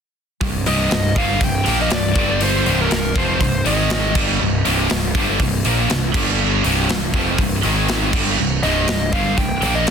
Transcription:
0.41 C1 C2 G2, kick, open hi-hat
0.66 C1 C2 G2 C3 D#5, open hi-hat
0.91 C1 C2 G2, snare, open hi-hat
1.16 G1 G2 D3 G3 F5, kick, open hi-hat
1.41 C1 C2 G2 G5, kick, open hi-hat
1.66 A#1 A#2 F3 A#3, open hi-hat
1.81 D#5
1.90 C1 C2 G2 D5, snare, open hi-hat
2.15 G1 G2 D3 G3, kick, open hi-hat
2.41 C5, open hi-hat
2.66 C1 C2 G2 C3, open hi-hat
2.82 A#4
2.91 C1 C2 G2, snare, open hi-hat
3.15 F1 F2 C3 F3 C5, kick, open hi-hat
3.40 C1 C2 G2 C5, kick, open hi-hat
3.65 G#1 G#2 D#3 G#3 D#5, open hi-hat
3.90 snare, open hi-hat
4.15 G1 G2 D3 G3, kick, crash
4.40 C1 C2 G2
4.65 C1 C2 G2 C3, open hi-hat
4.90 C1 C2 G2, snare, open hi-hat
5.15 G1 G2 D3 G3, kick, open hi-hat
5.40 C1 C2 G2, kick, open hi-hat
5.65 A#1 A#2 F3 A#3, open hi-hat
5.90 C1 C2 G2, snare, open hi-hat
6.14 G1 G2 D3 G3, kick, crash
6.64 C1 C2 G2 C3, open hi-hat
6.89 C1 C2 G2, snare, open hi-hat
7.14 F1 F2 C3 F3, kick, open hi-hat
7.38 C1 C2 G2, kick, open hi-hat
7.63 G#1 G#2 D#3 G#3, open hi-hat
7.88 snare, open hi-hat
8.13 G1 G2 D3 G3, kick, crash
8.39 C1 C2 G2
8.63 C1 C2 G2 C3 D#5, open hi-hat
8.88 C1 C2 G2, snare, open hi-hat
9.12 G1 G2 D3 G3 F5, kick, open hi-hat
9.38 C1 C2 G2 G5, kick, open hi-hat
9.62 A#1 A#2 F3 A#3, open hi-hat
9.75 D#5
9.87 open hi-hat

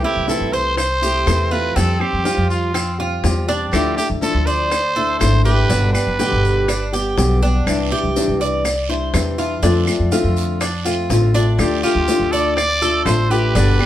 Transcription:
0.03 A3 C4 E4 G4
0.16 C2
0.28 C3 E3 A3 C4 E4 A4, high bongo, maracas
0.40 C2
0.52 C5, high bongo, maracas
0.77 C5, muted nylon-string guitar stroke, high bongo, claves, maracas
1.02 A3 C4 E4 G4, high bongo, maracas
1.26 E2 C3 E3 A3 C4 E4, high bongo, low bongo, claves, maracas
1.51 A3 C4 E4 F4 B4, high bongo, maracas
1.76 F2 F3 G3 C4 G4 A4, high bongo, maracas
2.00 G3 C4 G4, high bongo, claves
2.13 F2
2.24 F3 G3 C4 F4 G4, high bongo, maracas
2.37 F2
2.50 F4, maracas
2.74 C4, muted nylon-string guitar stroke, high bongo, claves, maracas
2.98 G3 C4 F4 G4, high bongo
3.23 E2 F3 G3 C4 G4, high bongo, low bongo, maracas
3.48 G3 C4 D4 G4, high bongo, maracas
3.72 D2 D3 F3 A3 D4 E4 G4, high bongo, claves, maracas
3.97 A3 D4 E4 G4, maracas
4.10 D2
4.21 D3 F3 A3 D4 E4 A4, high bongo, maracas
4.34 D2
4.46 C5 D5, high bongo, maracas
4.71 muted nylon-string guitar stroke, high bongo, claves, maracas
4.96 A3 D4 E4 A4, high bongo
5.19 G#1 D3 F3 A3 D4 E4 C5, high bongo, low bongo, claves, maracas
5.45 A3 D4 E4 G4 B4, high bongo, maracas
5.69 G1 B2 D3 G3 B3 D4 G4, high bongo, maracas
5.93 G3 B3 G4 B4, high bongo, claves, maracas
6.07 G1
6.18 B2 D3 G3 B3 G4, high bongo, maracas
6.32 G1
6.45 maracas
6.68 D4, muted nylon-string guitar stroke, high bongo, claves, maracas
6.92 G3 B3 G4, high bongo, maracas
7.17 B1 B2 D3 G3 B3 G4, high bongo, low bongo, maracas
7.42 G3 B3 D4 G4, high bongo, maracas
7.66 C2 C3 E3 G3 D4 E4, high bongo, long guiro, claves, maracas
7.91 G3 D4 E4 G4
8.04 C2
8.16 C3 E3 G3 D4 E4, high bongo, short guiro, maracas
8.28 C2
8.41 D5, high bongo, short guiro, maracas
8.65 muted nylon-string guitar stroke, high bongo, long guiro, claves, maracas
8.89 G3 D4 E4 C5, high bongo
9.13 E2 C3 E3 G3 D4 E4, high bongo, low bongo, short guiro, claves, maracas
9.38 G3 D4 E4 F4, high bongo, short guiro, maracas
9.62 F2 D3 A3 C4 D4 F4, high bongo, long guiro, maracas
9.87 A3 C4 F4, high bongo, claves, maracas
9.99 F2
10.12 D3 A3 C4 F4, high bongo, short guiro, maracas
10.24 F2
10.36 short guiro, maracas
10.61 D4, muted nylon-string guitar stroke, high bongo, long guiro, claves, maracas
10.85 A3 C4 F4, high bongo, maracas
11.10 A1 D3 A3 C4 F4, high bongo, low bongo, short guiro, maracas
11.34 A3 C4 D4 F4, high bongo, short guiro, maracas
11.58 D2 D3 A3 D4 F4 G4, high bongo, long guiro, claves, maracas
11.83 A3 D4 F4 G4, maracas
11.95 D2
12.07 D3 A3 D4 F4, high bongo, short guiro, maracas
12.20 D2
12.31 A4 D5, high bongo, short guiro, maracas
12.56 D5, muted nylon-string guitar stroke, high bongo, long guiro, claves, maracas
12.81 A3 D4 F4 A4, high bongo, maracas
13.05 A1 D3 A3 D4 F4 C5, high bongo, low bongo, short guiro, claves, maracas
13.30 A3 D4 F4 G4 B4, high bongo, short guiro, maracas
13.55 G1 B2 D3 G3 B3 D4 G4, high bongo, long guiro, maracas
13.79 G3 B3 G4, high bongo, claves

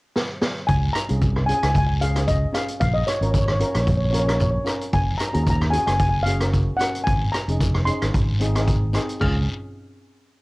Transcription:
0.15 snare
0.41 snare
0.67 C#2 G#5, kick, closed hi-hat, long guiro
0.93 A#5, cross-stick, closed hi-hat, short guiro
1.08 C2 C#4 F4 G#4, closed hi-hat
1.21 kick, closed hi-hat, short guiro
1.36 cross-stick
1.46 C#4 F4 G#4 G#5, closed hi-hat
1.54 G#5
1.63 C#2 G#5, cross-stick, closed hi-hat
1.70 G#5
1.75 G#5, kick, closed hi-hat, long guiro
1.87 G#5
2.01 C#4 F4 G#4 F5, closed hi-hat
2.15 C#4 F4 G#4, cross-stick, closed hi-hat
2.27 D#5, kick, closed hi-hat, short guiro
2.53 C#4 F4 G#4 F5, cross-stick, closed hi-hat, short guiro
2.68 closed hi-hat
2.80 A#1 F5, kick, closed hi-hat, long guiro
2.94 D#5
3.07 C#5, cross-stick, closed hi-hat, short guiro
3.14 C#5
3.21 G#1 C#4 F4 A#4 C#5, closed hi-hat
3.31 C#5, kick, closed hi-hat, short guiro
3.39 C#5
3.46 C#5, cross-stick
3.52 C#5
3.60 C#4 F4 A#4 C#5, closed hi-hat
3.68 C#5
3.75 A#1 C#5, cross-stick, closed hi-hat
3.82 C#5
3.87 C#5, kick, closed hi-hat, long guiro
3.97 C#5
4.05 C#5
4.11 C#4 F4 A#4 C#5, closed hi-hat
4.20 C#5
4.26 C#4 F4 A#4 C#5, cross-stick, closed hi-hat
4.33 C#5
4.40 C#5, kick, closed hi-hat, short guiro
4.51 C#5
4.64 C#4 F4 A#4, cross-stick, closed hi-hat, short guiro
4.81 closed hi-hat
4.93 F#1 G#5, kick, closed hi-hat, long guiro
5.18 A#5, cross-stick, closed hi-hat, short guiro
5.28 A#5
5.33 D#2 C#4 F#4 G#4 A#5, closed hi-hat
5.43 A#5, kick, closed hi-hat, short guiro
5.50 A#5
5.61 cross-stick
5.70 C#4 F#4 G#4 G#5, closed hi-hat
5.78 G#5
5.87 F#1 G#5, cross-stick, closed hi-hat
5.93 G#5
5.99 G#5, kick, closed hi-hat, long guiro
6.09 G#5
6.23 C#4 F#4 F5, closed hi-hat
6.27 G#4
6.40 C#4 F#4 A#4, cross-stick, closed hi-hat
6.54 kick, closed hi-hat, short guiro
6.77 C#4 F#4 F#5, cross-stick, closed hi-hat, short guiro
6.81 A#4
6.95 closed hi-hat
7.04 G#1 G#5, kick, closed hi-hat, long guiro
7.32 A#5, cross-stick, closed hi-hat, short guiro
7.48 F1 C#4 D#4 G#4, closed hi-hat
7.60 kick, closed hi-hat, short guiro
7.74 cross-stick
7.85 C#4 D#4 G#4 C6, closed hi-hat
8.02 G#1, cross-stick, closed hi-hat
8.14 G#1, kick, closed hi-hat, long guiro
8.40 C4 D#4 G#4, closed hi-hat
8.55 C4 D#4 G#4, cross-stick, closed hi-hat
8.67 kick, closed hi-hat, short guiro
8.93 C4 D#4 G#4, cross-stick, closed hi-hat, short guiro
9.09 closed hi-hat
9.20 C#2 C#4 F4 G#4 F6, kick, crash, long guiro

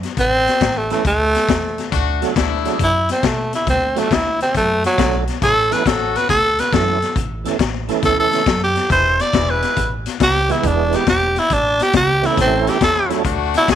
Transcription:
0.03 snare, closed hi-hat
0.17 A1 C4, kick, closed hi-hat
0.47 snare, closed hi-hat
0.61 A1, kick, snare, closed hi-hat
0.78 A3
0.90 E3 A3 C#4 E4 A4, snare, closed hi-hat
1.05 D2 A3, kick, closed hi-hat
1.34 snare, closed hi-hat
1.49 E2, kick, snare, closed hi-hat
1.78 snare, closed hi-hat
1.92 D2 A3 D4 F#4, kick, closed hi-hat
2.21 F#3 A3 D4 F#4 A4, snare, closed hi-hat
2.36 D2 A3 D4 E4, kick, snare, closed hi-hat
2.65 F#3 A3 D4 F#4 G#4, snare, closed hi-hat
2.79 F#2, kick, closed hi-hat
2.84 E4
3.09 C4, snare, closed hi-hat
3.23 B2 A3, kick, snare, closed hi-hat
3.53 E4, snare, closed hi-hat
3.67 D2 C4, kick, snare, closed hi-hat
3.96 F#3 A3 D4 F#4 A4, snare, closed hi-hat
4.11 D2 E4, kick, snare, closed hi-hat
4.40 C4, snare, closed hi-hat
4.55 F#2 A3, kick, snare, closed hi-hat
4.84 F#3, snare, closed hi-hat
4.98 B1 F#3 A3 D4 F#4 A4, kick, snare, closed hi-hat
5.27 snare, closed hi-hat
5.42 A1 A3 C#4 E4 A4, kick, closed hi-hat
5.71 E3 A3 C#4 E4 A4 B4, snare, closed hi-hat
5.86 A1 A3 C#4 F#4 A4, kick, snare, closed hi-hat
6.15 B4, snare, closed hi-hat
6.29 D2 A4, kick, snare, closed hi-hat
6.58 B4, snare, closed hi-hat
6.72 F#2 E3 A3 C#4 E4 F#4 A4, kick, snare, closed hi-hat
7.02 snare, closed hi-hat
7.16 A1, kick, closed hi-hat
7.44 E3 A3 C#4 E4 A4, snare, closed hi-hat
7.59 A1, kick, snare, closed hi-hat
7.88 E3 A3 C#4 E4 A4, snare, closed hi-hat
8.03 D2 A4, kick, snare, closed hi-hat
8.20 A4
8.32 snare, closed hi-hat
8.46 F#2, kick, snare, closed hi-hat
8.64 G4
8.76 snare, closed hi-hat
8.90 E1 G#3 B3 E4 C5, kick, closed hi-hat
9.19 D5, snare, closed hi-hat
9.33 E1 G#3 B3 E4, kick, snare, closed hi-hat
9.50 B4
9.62 snare, closed hi-hat
9.77 A1, kick, closed hi-hat
10.06 snare, closed hi-hat
10.20 C#2 G4, kick, snare, closed hi-hat
10.48 E3 G#3 B3 E4 G#4, snare, closed hi-hat
10.63 E1 D4, kick, closed hi-hat
10.92 G4, snare, closed hi-hat
11.07 E1 G4, kick, snare, closed hi-hat
11.36 E4, snare, closed hi-hat
11.50 A1 D4, kick, closed hi-hat
11.79 G4, snare, closed hi-hat
11.93 C#2 G4, kick, snare, closed hi-hat
12.22 E3 A3 C#4 E4 A4, snare, closed hi-hat
12.37 A1 A3 C#4 E4, kick, snare, closed hi-hat
12.41 C4
12.67 G4, snare, closed hi-hat
12.81 E2 A3 C#4 E4 A4, kick, snare, closed hi-hat
13.09 F#3 A3 D4 F#4 A4, snare, closed hi-hat
13.24 D2 A3 D4 F#4, kick, closed hi-hat
13.54 E4, snare, closed hi-hat
13.68 D#2 A4, kick, snare, closed hi-hat

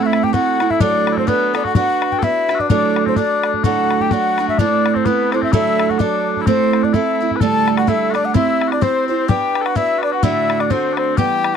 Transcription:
Already playing: A2 A3 C4 E4 A4
0.03 F#4 E5
0.07 E4
0.13 bodhran
0.23 G4 G5, bodhran
0.33 A3 C4 E4 F#4 A4 F#5, bodhran
0.60 C4 E4 A4, bodhran
0.70 E4 E5, bodhran
0.80 D2 A2 F#3 A3 D4 A4 D5, bodhran
1.07 bodhran
1.13 E4
1.17 C4 C5, bodhran
1.27 F#3 A3 B3 D4 A4 B4, bodhran
1.54 F#3 A3 D4 A4 D5, bodhran
1.64 F#4 F#5, bodhran
1.75 B3 D4 F#4 B4 F#5, bodhran
2.02 bodhran
2.12 G5, bodhran
2.18 B3 A4
2.22 D4 E4 F#4 B4 E5, bodhran
2.49 D4 F#4 B4, bodhran
2.55 F#4
2.59 D4 D5, bodhran
2.69 D2 A2 F#3 A3 D4 A4 D5, bodhran
2.96 bodhran
3.06 C4 C5, bodhran
3.16 F#3 A3 D4 A4 D5, bodhran
3.43 bodhran
3.54 bodhran
3.64 D2 A2 F#3 A3 D4 F#4 A4 F#5, bodhran
3.90 bodhran
4.00 G4 G5, bodhran
4.11 F#3 A3 D4 F#4 A4 F#5, bodhran
4.38 F#3 A3 D4 A4, bodhran
4.48 E5, bodhran
4.58 A2 A3 C4 D4 E4 A4 D5, bodhran
4.86 bodhran
4.94 C4 C5, bodhran
5.05 A3 B3 C4 E4 A4 B4, bodhran
5.32 C4 E4 A4 C5, bodhran
5.36 D4
5.41 C4 E5, bodhran
5.52 D2 A2 F#3 A3 D4 E4 A4 E5, bodhran
5.79 bodhran
5.89 F#4 F#5, bodhran
5.98 F#3 A3 D4 A4 D5, bodhran
6.37 bodhran
6.41 E4
6.46 A2 A3 C4 E4 A4 C5, bodhran
6.73 bodhran
6.83 D4 D5, bodhran
6.93 A3 C4 E4 A4 E5, bodhran
7.03 E4
7.13 E4
7.21 C4 E4 A4
7.31 bodhran
7.36 B4
7.40 D2 A2 D3 G3 A3 A4 A5, bodhran
7.68 bodhran
7.77 F#4 F#5, bodhran
7.87 D3 G3 A3 E4 A4 E5, bodhran
8.10 D4 F#4 A4
8.15 D3 G3 A3 D5, bodhran
8.25 F#5
8.34 C4 E4 G4 C5 E5, bodhran
8.61 bodhran
8.67 F#4
8.72 D4 D5, bodhran
8.81 C4 E4 G4 C5, bodhran
9.08 E4 G4 C5
9.28 B3 D4 G4 B4 G5, bodhran
9.55 bodhran
9.61 A4
9.65 F#4 F#5, bodhran
9.75 B3 D4 E4 F#4 B4 E5, bodhran
9.98 F#4
10.02 D4 D5, bodhran
10.12 F#4 F#5
10.23 D2 A2 D3 A3 D4 E4 F#4 E5, bodhran
10.50 bodhran
10.60 D4 D5, bodhran
10.70 D3 A3 C4 D4 F#4 C5, bodhran
10.93 D4
10.97 C4 C5, bodhran
11.17 E3 G3 B3 G4 G5, bodhran
11.44 bodhran

